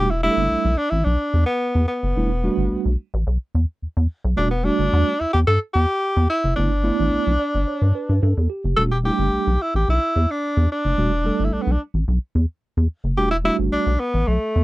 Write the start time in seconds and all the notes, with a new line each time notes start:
Already playing: E1 G4
0.11 E4
0.23 G3 A3 D4 E4 G4
0.31 A4
0.37 G1
0.51 B1
0.65 B1
0.77 D4
0.90 A1 E4
1.04 B1 D4
1.34 E2
1.46 B3
1.75 E2
1.88 B3
2.03 F#1
2.16 E1 G3 A3 D4 E4
2.44 G3 A3 D4 F#4
2.58 G1
2.72 B1
2.85 B1
3.14 A1
3.27 B1
3.55 E2
3.82 E2
3.97 E2
4.24 B1
4.36 E1 G3 A3 D4 F#4
4.51 B3
4.64 G3 A3 D4 F#4
4.79 G1
4.93 E2
5.20 E2 E4
5.33 E2 G4
5.47 G2 A4
5.73 E2 G4
6.17 E2
6.30 E4
6.44 F#1
6.56 G1 A3 B3 D4 E4
6.83 A3 B3 D4 E4
7.00 A1
7.13 B1
7.27 B1
7.39 D5
7.55 G1
7.68 C#5
7.82 G2
7.95 B4
8.09 G2
8.23 G2 A4
8.37 E2
8.50 G4
8.64 F#1
8.77 E1 G3 A3 D4 F#4 A4
8.91 G4
9.04 G3 A3 D4 E4 G4
9.12 G4
9.19 G1
9.33 B1
9.47 B1
9.62 E4
9.74 A1 G4
9.89 B1 E4
10.16 E2
10.31 D4
10.57 E2
10.72 D4
10.85 F#1
10.98 E1 G3 A3 D4 F#4
11.24 G3 A3 D4 A4
11.40 G1
11.45 E4
11.53 B1 D4
11.62 B3
11.67 B1
11.72 D4
11.94 A1
12.08 B1
12.35 E2
12.77 E2
13.04 F#1
13.17 E1 G3 A3 D4 F#4 G4
13.31 E4
13.44 G3 A3 D4 E4 F#4
13.59 G1
13.72 B1 D4
13.87 B1
14.00 B3
14.14 A1
14.27 B1 A3
14.56 E2